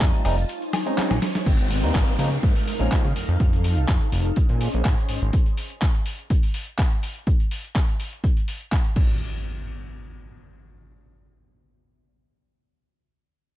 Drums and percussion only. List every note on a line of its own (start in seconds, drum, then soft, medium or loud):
0.01 kick loud
0.01 clap loud
0.01 closed hi-hat loud
0.01 tambourine soft
0.14 closed hi-hat soft
0.25 open hi-hat loud
0.25 tambourine medium
0.25 high woodblock medium
0.38 closed hi-hat soft
0.38 tambourine medium
0.48 closed hi-hat loud
0.48 tambourine soft
0.62 closed hi-hat soft
0.73 snare medium
0.73 open hi-hat loud
0.73 tambourine loud
0.73 high woodblock medium
0.86 closed hi-hat soft
0.86 tambourine medium
0.97 snare medium
0.97 clap loud
0.97 closed hi-hat loud
0.97 tambourine soft
1.11 snare medium
1.11 closed hi-hat soft
1.11 high woodblock medium
1.22 snare loud
1.22 open hi-hat loud
1.22 tambourine medium
1.34 snare medium
1.34 closed hi-hat soft
1.34 tambourine soft
1.46 kick loud
1.46 closed hi-hat medium
1.46 crash medium
1.46 tambourine soft
1.59 closed hi-hat soft
1.70 open hi-hat loud
1.70 tambourine medium
1.84 closed hi-hat soft
1.84 tambourine soft
1.95 kick loud
1.95 clap loud
1.95 closed hi-hat loud
1.95 tambourine soft
2.08 closed hi-hat soft
2.19 open hi-hat loud
2.19 tambourine medium
2.32 closed hi-hat soft
2.32 tambourine medium
2.43 kick loud
2.43 closed hi-hat medium
2.43 tambourine soft
2.56 open hi-hat medium
2.67 open hi-hat loud
2.67 tambourine medium
2.81 closed hi-hat soft
2.81 tambourine medium
2.91 kick loud
2.91 clap loud
2.91 closed hi-hat medium
2.91 tambourine soft
3.05 closed hi-hat soft
3.15 open hi-hat loud
3.15 tambourine medium
3.29 closed hi-hat soft
3.29 tambourine medium
3.40 kick loud
3.40 closed hi-hat medium
3.40 tambourine soft
3.53 closed hi-hat soft
3.64 open hi-hat loud
3.64 tambourine loud
3.76 closed hi-hat soft
3.76 tambourine medium
3.88 kick loud
3.88 clap loud
3.88 closed hi-hat medium
4.01 closed hi-hat soft
4.12 open hi-hat loud
4.12 tambourine loud
4.25 closed hi-hat soft
4.25 tambourine medium
4.36 kick loud
4.36 closed hi-hat medium
4.49 closed hi-hat soft
4.61 open hi-hat loud
4.61 tambourine medium
4.74 closed hi-hat soft
4.74 tambourine medium
4.85 kick loud
4.85 clap loud
4.85 closed hi-hat medium
4.98 closed hi-hat soft
5.09 open hi-hat loud
5.22 closed hi-hat soft
5.22 tambourine soft
5.33 kick loud
5.33 closed hi-hat medium
5.46 closed hi-hat soft
5.57 open hi-hat loud
5.70 closed hi-hat soft
5.81 kick loud
5.81 clap loud
5.81 closed hi-hat medium
5.94 closed hi-hat soft
6.06 open hi-hat loud
6.19 closed hi-hat soft
6.30 kick loud
6.30 closed hi-hat medium
6.43 open hi-hat medium
6.54 open hi-hat loud
6.67 closed hi-hat soft
6.78 kick loud
6.78 clap loud
6.78 closed hi-hat medium
6.91 closed hi-hat soft
7.03 open hi-hat loud
7.16 closed hi-hat soft
7.27 kick loud
7.27 closed hi-hat medium
7.40 closed hi-hat soft
7.51 open hi-hat loud
7.64 closed hi-hat soft
7.75 kick loud
7.75 clap loud
7.75 closed hi-hat medium
7.88 closed hi-hat soft
8.00 open hi-hat loud
8.13 closed hi-hat soft
8.24 kick loud
8.24 closed hi-hat medium
8.37 closed hi-hat soft
8.48 open hi-hat loud
8.61 closed hi-hat soft
8.72 kick loud
8.72 clap loud
8.72 closed hi-hat medium
8.85 closed hi-hat soft
8.96 kick loud
8.96 crash medium